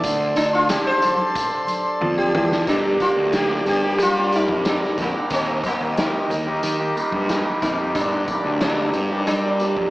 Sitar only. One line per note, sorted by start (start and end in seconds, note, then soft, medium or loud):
0.37 0.52 D4 medium
0.55 0.69 F4 medium
0.70 0.85 G4 medium
0.87 2.14 C5 loud
2.18 2.33 G4 medium
2.35 2.66 G4 loud
2.69 3.02 D4 medium
3.02 3.10 F4 medium
3.35 3.68 G4 medium
3.69 4.01 G4 medium
4.02 4.34 F4 loud
4.36 4.68 D#4 medium
4.69 4.77 D4 medium
5.01 5.32 A#3 medium
5.33 5.66 C4 medium
5.66 5.98 A#3 medium
5.99 6.93 D#4 medium
7.62 7.95 D#4 medium
7.95 8.58 D4 medium
8.61 9.26 D4 medium
9.27 9.90 D4 medium